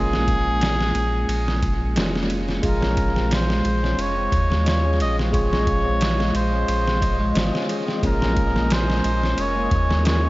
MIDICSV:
0, 0, Header, 1, 8, 480
1, 0, Start_track
1, 0, Key_signature, -5, "minor"
1, 0, Tempo, 674157
1, 1880, Time_signature, 4, 2, 24, 8
1, 7329, End_track
2, 0, Start_track
2, 0, Title_t, "Synth texture"
2, 0, Program_c, 0, 99
2, 0, Note_on_c, 0, 97, 78
2, 1888, Note_off_c, 0, 97, 0
2, 1895, Note_on_c, 0, 75, 77
2, 7329, Note_off_c, 0, 75, 0
2, 7329, End_track
3, 0, Start_track
3, 0, Title_t, "Ambient pad"
3, 0, Program_c, 1, 92
3, 1876, Note_on_c, 1, 77, 88
3, 1877, Note_on_c, 1, 68, 71
3, 5690, Note_off_c, 1, 68, 0
3, 5690, Note_off_c, 1, 77, 0
3, 5716, Note_on_c, 1, 80, 85
3, 5717, Note_on_c, 1, 70, 72
3, 7329, Note_off_c, 1, 70, 0
3, 7329, Note_off_c, 1, 80, 0
3, 7329, End_track
4, 0, Start_track
4, 0, Title_t, "Muted trumpet"
4, 0, Program_c, 2, 59
4, 0, Note_on_c, 2, 68, 124
4, 1613, Note_off_c, 2, 68, 0
4, 1900, Note_on_c, 2, 70, 83
4, 2381, Note_on_c, 2, 72, 92
4, 2391, Note_off_c, 2, 70, 0
4, 2858, Note_on_c, 2, 73, 102
4, 2869, Note_off_c, 2, 72, 0
4, 3329, Note_off_c, 2, 73, 0
4, 3334, Note_on_c, 2, 73, 97
4, 3551, Note_off_c, 2, 73, 0
4, 3569, Note_on_c, 2, 75, 94
4, 3675, Note_off_c, 2, 75, 0
4, 3806, Note_on_c, 2, 73, 102
4, 4495, Note_off_c, 2, 73, 0
4, 4528, Note_on_c, 2, 72, 95
4, 5456, Note_off_c, 2, 72, 0
4, 5740, Note_on_c, 2, 70, 84
4, 6217, Note_on_c, 2, 72, 95
4, 6228, Note_off_c, 2, 70, 0
4, 6698, Note_on_c, 2, 73, 98
4, 6709, Note_off_c, 2, 72, 0
4, 7166, Note_off_c, 2, 73, 0
4, 7171, Note_on_c, 2, 73, 91
4, 7329, Note_off_c, 2, 73, 0
4, 7329, End_track
5, 0, Start_track
5, 0, Title_t, "Tine electric piano"
5, 0, Program_c, 3, 4
5, 0, Control_c, 3, 64, 127
5, 0, Note_on_c, 3, 56, 76
5, 0, Note_on_c, 3, 58, 77
5, 0, Note_on_c, 3, 61, 71
5, 0, Note_on_c, 3, 65, 95
5, 1368, Note_off_c, 3, 56, 0
5, 1373, Note_off_c, 3, 58, 0
5, 1375, Note_off_c, 3, 61, 0
5, 1379, Note_off_c, 3, 65, 0
5, 1396, Note_on_c, 3, 56, 68
5, 1401, Note_on_c, 3, 58, 63
5, 1403, Note_on_c, 3, 61, 69
5, 1407, Note_on_c, 3, 65, 76
5, 1851, Note_off_c, 3, 56, 0
5, 1853, Note_off_c, 3, 58, 0
5, 1854, Note_off_c, 3, 61, 0
5, 1856, Note_off_c, 3, 65, 0
5, 1868, Note_on_c, 3, 56, 80
5, 1873, Note_on_c, 3, 68, 68
5, 1887, Note_on_c, 3, 65, 84
5, 1890, Control_c, 3, 64, 0
5, 2005, Control_c, 3, 64, 127
5, 3287, Note_off_c, 3, 56, 0
5, 3289, Note_off_c, 3, 68, 0
5, 3296, Note_off_c, 3, 65, 0
5, 3319, Note_on_c, 3, 56, 71
5, 3323, Note_on_c, 3, 73, 65
5, 3328, Note_on_c, 3, 65, 74
5, 3772, Note_off_c, 3, 56, 0
5, 3774, Note_off_c, 3, 73, 0
5, 3777, Note_off_c, 3, 65, 0
5, 3788, Note_on_c, 3, 56, 82
5, 3794, Note_on_c, 3, 68, 73
5, 3805, Note_on_c, 3, 65, 90
5, 5207, Note_off_c, 3, 56, 0
5, 5210, Note_off_c, 3, 68, 0
5, 5216, Note_off_c, 3, 65, 0
5, 5234, Note_on_c, 3, 56, 73
5, 5237, Note_on_c, 3, 72, 70
5, 5245, Note_on_c, 3, 65, 80
5, 5690, Note_off_c, 3, 56, 0
5, 5691, Note_off_c, 3, 72, 0
5, 5695, Note_off_c, 3, 65, 0
5, 5715, Note_on_c, 3, 56, 79
5, 5720, Note_on_c, 3, 58, 73
5, 5728, Control_c, 3, 64, 0
5, 5728, Note_on_c, 3, 61, 77
5, 5731, Note_on_c, 3, 65, 87
5, 5840, Control_c, 3, 64, 127
5, 7130, Note_off_c, 3, 56, 0
5, 7133, Note_off_c, 3, 58, 0
5, 7137, Note_off_c, 3, 61, 0
5, 7139, Note_off_c, 3, 65, 0
5, 7159, Note_on_c, 3, 56, 71
5, 7160, Note_on_c, 3, 58, 67
5, 7164, Note_on_c, 3, 61, 67
5, 7169, Note_on_c, 3, 65, 83
5, 7329, Note_off_c, 3, 56, 0
5, 7329, Note_off_c, 3, 58, 0
5, 7329, Note_off_c, 3, 61, 0
5, 7329, Note_off_c, 3, 65, 0
5, 7329, End_track
6, 0, Start_track
6, 0, Title_t, "Clean electric guitar"
6, 0, Program_c, 4, 27
6, 2000, Note_on_c, 4, 61, 74
6, 2231, Note_off_c, 4, 61, 0
6, 2242, Note_on_c, 4, 60, 68
6, 2353, Note_off_c, 4, 60, 0
6, 2486, Note_on_c, 4, 56, 73
6, 2713, Note_off_c, 4, 56, 0
6, 2729, Note_on_c, 4, 61, 75
6, 2955, Note_off_c, 4, 61, 0
6, 2969, Note_on_c, 4, 60, 67
6, 3076, Note_off_c, 4, 60, 0
6, 3207, Note_on_c, 4, 56, 91
6, 3434, Note_off_c, 4, 56, 0
6, 3447, Note_on_c, 4, 61, 80
6, 3674, Note_off_c, 4, 61, 0
6, 3688, Note_on_c, 4, 60, 70
6, 3915, Note_off_c, 4, 60, 0
6, 3926, Note_on_c, 4, 61, 69
6, 4154, Note_off_c, 4, 61, 0
6, 4162, Note_on_c, 4, 60, 73
6, 4273, Note_off_c, 4, 60, 0
6, 4400, Note_on_c, 4, 56, 76
6, 4630, Note_off_c, 4, 56, 0
6, 4644, Note_on_c, 4, 61, 69
6, 4872, Note_off_c, 4, 61, 0
6, 4886, Note_on_c, 4, 60, 75
6, 4995, Note_off_c, 4, 60, 0
6, 5121, Note_on_c, 4, 56, 100
6, 5351, Note_off_c, 4, 56, 0
6, 5358, Note_on_c, 4, 61, 72
6, 5590, Note_off_c, 4, 61, 0
6, 5600, Note_on_c, 4, 60, 70
6, 5717, Note_off_c, 4, 60, 0
6, 5845, Note_on_c, 4, 61, 70
6, 6073, Note_off_c, 4, 61, 0
6, 6088, Note_on_c, 4, 58, 75
6, 6195, Note_off_c, 4, 58, 0
6, 6329, Note_on_c, 4, 56, 75
6, 6555, Note_off_c, 4, 56, 0
6, 6568, Note_on_c, 4, 61, 69
6, 6795, Note_off_c, 4, 61, 0
6, 6809, Note_on_c, 4, 58, 72
6, 6916, Note_off_c, 4, 58, 0
6, 7044, Note_on_c, 4, 56, 93
6, 7273, Note_off_c, 4, 56, 0
6, 7284, Note_on_c, 4, 61, 73
6, 7329, Note_off_c, 4, 61, 0
6, 7329, End_track
7, 0, Start_track
7, 0, Title_t, "Sub bass"
7, 0, Program_c, 5, 38
7, 0, Note_on_c, 5, 34, 87
7, 656, Note_off_c, 5, 34, 0
7, 675, Note_on_c, 5, 34, 92
7, 890, Note_off_c, 5, 34, 0
7, 912, Note_on_c, 5, 34, 85
7, 1394, Note_on_c, 5, 29, 78
7, 1404, Note_off_c, 5, 34, 0
7, 1855, Note_off_c, 5, 29, 0
7, 1875, Note_on_c, 5, 34, 97
7, 2576, Note_off_c, 5, 34, 0
7, 2597, Note_on_c, 5, 34, 91
7, 2811, Note_off_c, 5, 34, 0
7, 2832, Note_on_c, 5, 29, 78
7, 3049, Note_off_c, 5, 29, 0
7, 3078, Note_on_c, 5, 39, 80
7, 3557, Note_on_c, 5, 34, 88
7, 3567, Note_off_c, 5, 39, 0
7, 4497, Note_off_c, 5, 34, 0
7, 4516, Note_on_c, 5, 34, 95
7, 4731, Note_off_c, 5, 34, 0
7, 4757, Note_on_c, 5, 34, 82
7, 5217, Note_off_c, 5, 34, 0
7, 5235, Note_on_c, 5, 32, 95
7, 5349, Note_off_c, 5, 32, 0
7, 5717, Note_on_c, 5, 34, 95
7, 6417, Note_off_c, 5, 34, 0
7, 6439, Note_on_c, 5, 34, 95
7, 6653, Note_off_c, 5, 34, 0
7, 6675, Note_on_c, 5, 29, 76
7, 6890, Note_off_c, 5, 29, 0
7, 6915, Note_on_c, 5, 39, 79
7, 7329, Note_off_c, 5, 39, 0
7, 7329, End_track
8, 0, Start_track
8, 0, Title_t, "Drums"
8, 95, Note_on_c, 9, 38, 54
8, 166, Note_off_c, 9, 38, 0
8, 198, Note_on_c, 9, 36, 96
8, 198, Note_on_c, 9, 51, 67
8, 269, Note_off_c, 9, 36, 0
8, 270, Note_off_c, 9, 51, 0
8, 437, Note_on_c, 9, 51, 85
8, 447, Note_on_c, 9, 38, 113
8, 508, Note_off_c, 9, 51, 0
8, 518, Note_off_c, 9, 38, 0
8, 574, Note_on_c, 9, 38, 49
8, 645, Note_off_c, 9, 38, 0
8, 676, Note_on_c, 9, 51, 64
8, 747, Note_off_c, 9, 51, 0
8, 918, Note_on_c, 9, 51, 82
8, 989, Note_off_c, 9, 51, 0
8, 1054, Note_on_c, 9, 38, 47
8, 1125, Note_off_c, 9, 38, 0
8, 1157, Note_on_c, 9, 36, 90
8, 1157, Note_on_c, 9, 51, 65
8, 1228, Note_off_c, 9, 36, 0
8, 1228, Note_off_c, 9, 51, 0
8, 1396, Note_on_c, 9, 51, 81
8, 1406, Note_on_c, 9, 38, 111
8, 1467, Note_off_c, 9, 51, 0
8, 1477, Note_off_c, 9, 38, 0
8, 1535, Note_on_c, 9, 38, 45
8, 1606, Note_off_c, 9, 38, 0
8, 1637, Note_on_c, 9, 51, 65
8, 1709, Note_off_c, 9, 51, 0
8, 1771, Note_on_c, 9, 38, 37
8, 1842, Note_off_c, 9, 38, 0
8, 1873, Note_on_c, 9, 51, 81
8, 1875, Note_on_c, 9, 36, 102
8, 1945, Note_off_c, 9, 51, 0
8, 1946, Note_off_c, 9, 36, 0
8, 2011, Note_on_c, 9, 38, 55
8, 2082, Note_off_c, 9, 38, 0
8, 2115, Note_on_c, 9, 51, 68
8, 2116, Note_on_c, 9, 36, 94
8, 2186, Note_off_c, 9, 51, 0
8, 2187, Note_off_c, 9, 36, 0
8, 2251, Note_on_c, 9, 38, 43
8, 2323, Note_off_c, 9, 38, 0
8, 2357, Note_on_c, 9, 51, 85
8, 2367, Note_on_c, 9, 38, 110
8, 2429, Note_off_c, 9, 51, 0
8, 2439, Note_off_c, 9, 38, 0
8, 2492, Note_on_c, 9, 38, 53
8, 2563, Note_off_c, 9, 38, 0
8, 2598, Note_on_c, 9, 51, 63
8, 2669, Note_off_c, 9, 51, 0
8, 2735, Note_on_c, 9, 38, 38
8, 2806, Note_off_c, 9, 38, 0
8, 2839, Note_on_c, 9, 51, 80
8, 2910, Note_off_c, 9, 51, 0
8, 3077, Note_on_c, 9, 36, 94
8, 3079, Note_on_c, 9, 51, 64
8, 3149, Note_off_c, 9, 36, 0
8, 3150, Note_off_c, 9, 51, 0
8, 3217, Note_on_c, 9, 38, 48
8, 3288, Note_off_c, 9, 38, 0
8, 3320, Note_on_c, 9, 51, 84
8, 3330, Note_on_c, 9, 38, 105
8, 3391, Note_off_c, 9, 51, 0
8, 3401, Note_off_c, 9, 38, 0
8, 3560, Note_on_c, 9, 51, 67
8, 3631, Note_off_c, 9, 51, 0
8, 3697, Note_on_c, 9, 38, 46
8, 3769, Note_off_c, 9, 38, 0
8, 3798, Note_on_c, 9, 36, 95
8, 3801, Note_on_c, 9, 51, 78
8, 3869, Note_off_c, 9, 36, 0
8, 3872, Note_off_c, 9, 51, 0
8, 3936, Note_on_c, 9, 38, 51
8, 4007, Note_off_c, 9, 38, 0
8, 4037, Note_on_c, 9, 36, 93
8, 4038, Note_on_c, 9, 51, 63
8, 4108, Note_off_c, 9, 36, 0
8, 4109, Note_off_c, 9, 51, 0
8, 4279, Note_on_c, 9, 51, 92
8, 4289, Note_on_c, 9, 38, 112
8, 4350, Note_off_c, 9, 51, 0
8, 4360, Note_off_c, 9, 38, 0
8, 4416, Note_on_c, 9, 38, 50
8, 4487, Note_off_c, 9, 38, 0
8, 4519, Note_on_c, 9, 51, 66
8, 4590, Note_off_c, 9, 51, 0
8, 4759, Note_on_c, 9, 51, 84
8, 4830, Note_off_c, 9, 51, 0
8, 4895, Note_on_c, 9, 38, 49
8, 4966, Note_off_c, 9, 38, 0
8, 4997, Note_on_c, 9, 36, 96
8, 4999, Note_on_c, 9, 51, 70
8, 5068, Note_off_c, 9, 36, 0
8, 5071, Note_off_c, 9, 51, 0
8, 5236, Note_on_c, 9, 51, 85
8, 5246, Note_on_c, 9, 38, 106
8, 5307, Note_off_c, 9, 51, 0
8, 5317, Note_off_c, 9, 38, 0
8, 5376, Note_on_c, 9, 38, 51
8, 5447, Note_off_c, 9, 38, 0
8, 5478, Note_on_c, 9, 51, 65
8, 5549, Note_off_c, 9, 51, 0
8, 5613, Note_on_c, 9, 38, 37
8, 5685, Note_off_c, 9, 38, 0
8, 5717, Note_on_c, 9, 36, 103
8, 5720, Note_on_c, 9, 51, 78
8, 5788, Note_off_c, 9, 36, 0
8, 5791, Note_off_c, 9, 51, 0
8, 5854, Note_on_c, 9, 38, 57
8, 5925, Note_off_c, 9, 38, 0
8, 5956, Note_on_c, 9, 36, 90
8, 5956, Note_on_c, 9, 51, 61
8, 6027, Note_off_c, 9, 36, 0
8, 6027, Note_off_c, 9, 51, 0
8, 6094, Note_on_c, 9, 38, 43
8, 6165, Note_off_c, 9, 38, 0
8, 6197, Note_on_c, 9, 51, 89
8, 6207, Note_on_c, 9, 38, 118
8, 6268, Note_off_c, 9, 51, 0
8, 6278, Note_off_c, 9, 38, 0
8, 6334, Note_on_c, 9, 38, 54
8, 6405, Note_off_c, 9, 38, 0
8, 6438, Note_on_c, 9, 51, 66
8, 6509, Note_off_c, 9, 51, 0
8, 6575, Note_on_c, 9, 38, 41
8, 6646, Note_off_c, 9, 38, 0
8, 6677, Note_on_c, 9, 51, 81
8, 6748, Note_off_c, 9, 51, 0
8, 6916, Note_on_c, 9, 36, 94
8, 6916, Note_on_c, 9, 51, 62
8, 6987, Note_off_c, 9, 51, 0
8, 6988, Note_off_c, 9, 36, 0
8, 7053, Note_on_c, 9, 38, 49
8, 7124, Note_off_c, 9, 38, 0
8, 7157, Note_on_c, 9, 51, 87
8, 7167, Note_on_c, 9, 38, 103
8, 7229, Note_off_c, 9, 51, 0
8, 7239, Note_off_c, 9, 38, 0
8, 7329, End_track
0, 0, End_of_file